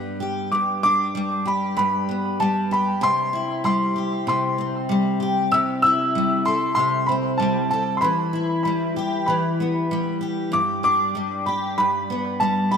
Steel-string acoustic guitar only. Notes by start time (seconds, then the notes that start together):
Already playing: G2 G3 B3 D4 G4
0.20 G4
0.52 G2
0.83 D4
1.15 G3
1.45 G4
1.77 G2
2.09 B3
2.40 G3
2.71 G4
3.01 C3
3.33 E4
3.64 G3
3.96 G4
4.27 C3
4.58 C4
4.89 G3
5.20 G4
5.51 C3
5.84 E4
6.15 G3
6.45 A4
6.76 C3
7.09 C4
7.40 G3
7.71 A4
8.02 E3
8.33 E4
8.65 G3
8.96 G4
9.28 E3
9.60 B3
9.91 G3
10.21 G4
10.52 G2
10.83 D4
11.15 G3
11.46 G4
11.78 G2
12.10 B3
12.40 G3
12.72 G4